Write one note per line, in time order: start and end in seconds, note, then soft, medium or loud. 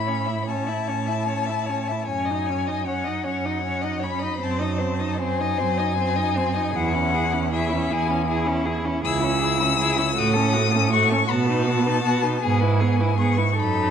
0.00 0.74 A2 medium
0.00 0.50 B5 medium
0.07 0.29 C#4 soft
0.07 0.27 C#5 soft
0.26 0.47 E4 soft
0.26 0.45 E5 soft
0.46 0.70 C#4 soft
0.46 0.69 C#5 soft
0.46 2.07 A5 medium
0.67 0.90 E4 medium
0.67 0.89 E5 soft
0.87 1.94 A2 medium
0.87 1.10 C#4 soft
0.87 1.08 C#5 soft
1.07 1.28 E4 soft
1.07 1.27 E5 medium
1.28 1.51 C#4 soft
1.28 1.47 C#5 soft
1.46 1.71 E4 medium
1.46 1.67 E5 soft
1.66 1.93 C#4 soft
1.66 1.89 C#5 soft
1.88 2.10 E4 soft
1.88 2.05 E5 soft
2.05 3.12 F#2 medium
2.05 2.27 C#5 medium
2.05 2.89 G#5 medium
2.10 2.32 C#4 medium
2.25 2.48 D#5 soft
2.30 2.51 D#4 medium
2.46 2.69 C#4 medium
2.46 2.69 C#5 medium
2.67 2.87 D#4 soft
2.67 2.86 D#5 soft
2.86 3.09 C#4 soft
2.86 3.06 C#5 medium
2.86 3.26 F#5 medium
3.04 3.26 D#4 medium
3.04 3.25 D#5 soft
3.24 4.28 F#2 medium
3.24 3.46 C#4 medium
3.24 3.47 C#5 medium
3.24 4.04 F#5 medium
3.45 3.64 D#4 medium
3.45 3.61 D#5 medium
3.61 3.86 C#4 medium
3.61 3.83 C#5 medium
3.81 4.05 D#4 soft
3.81 4.01 D#5 medium
4.00 4.24 C#4 medium
4.00 4.21 C#5 soft
4.00 4.44 B5 medium
4.19 4.41 D#4 medium
4.19 4.37 D#5 medium
4.37 4.60 C5 medium
4.42 5.46 F#2 medium
4.42 4.62 C4 medium
4.42 5.20 A5 medium
4.59 4.82 D#4 medium
4.59 4.80 D#5 medium
4.78 5.02 C4 medium
4.78 5.01 C5 medium
5.00 5.20 D#4 medium
5.00 5.19 D#5 medium
5.19 5.42 C4 medium
5.19 5.42 C5 medium
5.19 6.77 G#5 loud
5.40 5.61 D#4 medium
5.40 5.60 D#5 medium
5.58 6.61 F#2 medium
5.58 5.81 C4 medium
5.58 5.79 C5 medium
5.78 5.98 D#4 medium
5.78 5.97 D#5 medium
5.97 6.19 C4 medium
5.97 6.17 C5 medium
6.15 6.38 D#4 medium
6.15 6.37 D#5 medium
6.35 6.58 C4 medium
6.35 6.55 C5 medium
6.54 6.76 D#4 medium
6.54 6.73 D#5 medium
6.73 7.76 E2 medium
6.73 6.97 E4 medium
6.73 6.94 G#4 medium
6.73 7.53 F#5 loud
6.93 7.16 C#4 medium
6.93 7.16 E4 medium
7.14 7.35 E4 medium
7.14 7.35 G#4 medium
7.33 7.52 C#4 medium
7.33 7.52 E4 medium
7.52 7.75 E4 medium
7.52 7.72 G#4 medium
7.52 7.94 E5 medium
7.70 7.92 C#4 medium
7.70 7.92 E4 medium
7.90 8.90 E2 medium
7.90 8.12 E4 medium
7.90 8.10 G#4 medium
7.90 8.29 G#5 loud
8.08 8.27 C#4 medium
8.08 8.27 E4 medium
8.28 8.48 E4 medium
8.28 8.49 G#4 medium
8.47 8.68 C#4 medium
8.47 8.67 E4 medium
8.65 8.86 E4 medium
8.65 8.87 G#4 medium
8.85 9.04 C#4 medium
8.85 9.03 E4 medium
9.04 10.04 C#2 medium
9.04 9.25 E4 medium
9.04 9.22 G#4 medium
9.04 10.19 E6 loud
9.20 9.45 C#4 medium
9.20 9.40 E4 medium
9.39 9.59 G#4 medium
9.44 9.63 E4 medium
9.58 9.79 C#4 medium
9.58 9.77 E4 medium
9.78 10.00 E4 medium
9.78 9.98 G#4 medium
9.97 10.16 C#4 medium
9.97 10.15 E4 medium
10.16 11.18 A2 loud
10.16 10.37 A3 medium
10.16 10.35 F#4 medium
10.16 10.92 D#6 loud
10.33 10.58 C#4 medium
10.33 10.55 A4 medium
10.53 10.77 A3 medium
10.53 10.73 F#4 medium
10.72 10.93 C#4 medium
10.72 10.91 A4 medium
10.91 11.13 A3 medium
10.91 11.10 F#4 medium
10.91 11.32 C#6 loud
11.09 11.29 C#4 medium
11.09 11.26 A4 medium
11.26 11.51 B3 medium
11.26 11.48 F#4 medium
11.30 12.30 B2 medium
11.30 12.44 A5 loud
11.46 11.69 D#4 medium
11.46 11.65 B4 medium
11.63 11.85 F#4 medium
11.67 11.88 B3 medium
11.84 12.03 D#4 medium
11.84 12.01 B4 medium
12.02 12.25 B3 medium
12.02 12.24 F#4 medium
12.22 12.42 D#4 medium
12.22 12.41 B4 medium
12.42 13.45 G#2 loud
12.42 12.63 B3 medium
12.42 12.62 G#4 medium
12.42 13.20 G#5 medium
12.60 12.83 E4 medium
12.60 12.82 B4 medium
12.80 13.02 B3 medium
12.80 12.98 G#4 medium
12.97 13.17 E4 medium
12.97 13.17 B4 medium
13.18 13.40 B3 medium
13.18 13.38 G#4 medium
13.18 13.61 C#6 loud
13.37 13.56 E4 medium
13.37 13.55 B4 medium
13.56 13.90 F#2 medium
13.56 13.90 D#4 medium
13.56 13.90 A4 medium
13.56 13.90 B5 loud